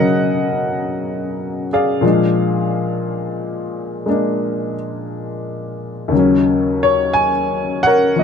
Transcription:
0.00 2.02 B2 soft
0.00 2.04 C#3 soft
0.00 2.02 F#3 soft
0.00 2.03 A#3 soft
0.00 2.04 D#4 soft
0.00 1.68 A#4 medium
0.00 2.05 D#5 medium
0.00 1.68 F#5 loud
0.00 2.04 G#5 medium
1.73 4.75 G#4 soft
1.73 4.75 D5 soft
1.73 4.75 F5 medium
2.01 6.11 A#2 soft
2.01 6.12 F3 soft
2.01 4.04 G#3 soft
2.06 4.08 D4 soft
4.06 6.11 G#3 soft
4.06 6.12 A#3 soft
4.06 6.13 D4 soft
6.08 8.24 D#2 soft
6.08 8.24 C#3 soft
6.15 8.24 F#3 soft
6.15 8.24 C#4 medium
6.83 7.12 C#5 medium
7.14 7.29 G#5 medium
7.83 8.24 A#4 medium
7.83 8.24 C#5 medium
7.83 8.24 F#5 loud
8.16 8.24 F3 soft
8.16 8.24 A#3 soft
8.16 8.24 D#5 soft

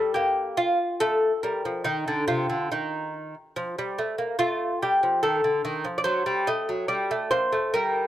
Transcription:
0.00 0.15 G3 medium
0.00 0.14 A4 medium
0.14 0.77 A#3 medium
0.14 0.56 G4 medium
0.57 0.99 F4 medium
1.00 1.31 A3 medium
1.00 1.41 A4 loud
1.43 1.64 G3 medium
1.43 1.84 A#4 medium
1.65 1.85 F3 medium
1.84 2.05 D#3 medium
1.84 2.26 D#4 medium
2.08 2.27 D3 medium
2.28 2.48 C3 medium
2.28 2.69 F4 medium
2.50 2.70 D3 medium
2.71 3.34 D#3 medium
2.71 3.13 D#4 medium
3.56 3.77 F3 medium
3.79 3.98 G3 medium
3.98 4.18 A3 medium
4.18 4.39 A#3 medium
4.39 4.70 A3 medium
4.39 4.80 F4 medium
4.82 5.02 G3 medium
4.82 5.22 G4 medium
5.03 5.23 F3 medium
5.23 5.43 D#3 medium
5.23 5.97 A4 medium
5.44 5.64 D3 medium
5.65 5.85 D#3 medium
5.85 6.05 F3 medium
5.98 6.04 D5 medium
6.04 6.26 F#3 medium
6.04 6.46 C5 medium
6.26 6.47 G3 medium
6.47 6.69 A3 medium
6.47 6.88 D#5 medium
6.69 6.88 F#3 medium
6.88 7.10 G3 medium
6.88 7.30 D5 medium
7.11 7.32 A3 medium
7.31 7.53 A#3 medium
7.31 7.73 C5 medium
7.52 7.74 A3 medium
7.74 8.06 G3 medium
7.74 8.07 A#4 medium

